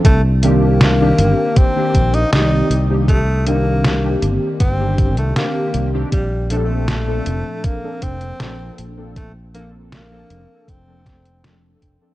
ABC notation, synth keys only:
X:1
M:4/4
L:1/16
Q:1/4=79
K:Cdor
V:1 name="Synth keys"
z2 [E,B,CDG]3 [E,B,CDG]4 [E,B,CDG]3 [E,B,CGd]3 [E,B,CDG] | z2 [E,B,CDG]3 [E,B,CDG]4 [E,B,CDG]3 [E,B,CDG]3 [E,B,CDG] | z2 [B,,F,CDA]3 [B,,F,CDA]4 [F,B,CDA]3 [F,B,CDA]3 [F,B,CDA] | z2 [F,B,CDA]3 [F,B,CDA]4 [F,B,CDA]3 [F,B,CDA]3 [F,B,CDA] |]